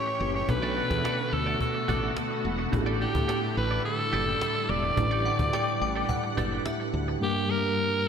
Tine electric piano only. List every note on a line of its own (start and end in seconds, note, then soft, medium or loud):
0.00 0.50 A2 medium
0.00 0.16 C#4 medium
0.00 0.16 E4 medium
0.00 0.17 G4 medium
0.00 0.17 A4 medium
0.20 0.48 C#4 soft
0.20 0.49 E4 soft
0.20 0.49 G4 soft
0.20 0.49 B4 medium
0.48 1.29 B2 medium
0.48 2.69 B3 medium
0.48 2.69 D4 medium
0.48 2.69 F#4 medium
0.48 2.70 A4 medium
2.72 3.53 A2 medium
2.72 4.93 D4 medium
2.72 4.93 E4 medium
2.72 4.94 G4 medium
2.72 2.80 G#4 medium
2.81 4.97 A4 medium
4.96 5.77 A2 medium
4.96 6.34 D4 medium
4.96 6.34 E4 medium
4.96 6.35 G4 medium
4.96 6.35 B4 medium
6.36 7.20 D4 medium
6.36 7.21 E4 soft
6.36 7.21 G4 medium
6.36 7.22 B4 medium
7.20 8.02 G2 medium
7.20 8.08 G3 medium
7.20 8.08 A#3 medium
7.20 8.08 D4 medium
7.20 8.08 G4 medium
7.20 8.08 A#4 medium